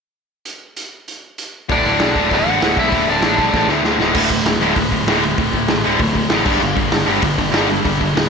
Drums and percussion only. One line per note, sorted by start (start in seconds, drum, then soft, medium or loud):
0.45 closed hi-hat medium
0.77 closed hi-hat medium
1.08 closed hi-hat medium
1.38 closed hi-hat medium
1.70 kick loud
1.70 open hi-hat medium
2.00 snare loud
2.00 open hi-hat medium
2.16 kick medium
2.31 kick loud
2.31 open hi-hat medium
2.62 snare loud
2.62 open hi-hat medium
2.77 kick medium
2.92 kick loud
2.92 open hi-hat medium
3.23 snare loud
3.23 open hi-hat medium
3.38 kick medium
3.54 kick loud
3.54 snare medium
3.69 snare medium
3.85 snare medium
4.00 snare medium
4.15 kick loud
4.15 crash loud
4.30 kick medium
4.30 open hi-hat medium
4.46 snare loud
4.46 open hi-hat medium
4.61 open hi-hat medium
4.76 kick loud
4.76 open hi-hat medium
4.92 kick medium
4.92 open hi-hat medium
5.08 snare loud
5.08 open hi-hat medium
5.23 open hi-hat medium
5.38 kick loud
5.38 open hi-hat medium
5.53 kick medium
5.53 open hi-hat medium
5.68 snare loud
5.68 open hi-hat medium
5.84 open hi-hat medium
5.99 kick loud
5.99 open hi-hat medium
6.15 kick medium
6.15 open hi-hat medium
6.30 snare loud
6.30 open hi-hat medium
6.46 kick loud
6.46 crash loud
6.76 kick medium
6.76 open hi-hat medium
6.92 snare loud
6.92 open hi-hat medium
7.08 open hi-hat medium
7.22 kick loud
7.22 open hi-hat medium
7.38 kick medium
7.38 open hi-hat medium
7.54 snare loud
7.54 open hi-hat medium
7.70 open hi-hat medium
7.85 kick loud
7.85 open hi-hat medium
8.01 kick medium
8.01 open hi-hat medium
8.17 snare loud
8.17 open hi-hat medium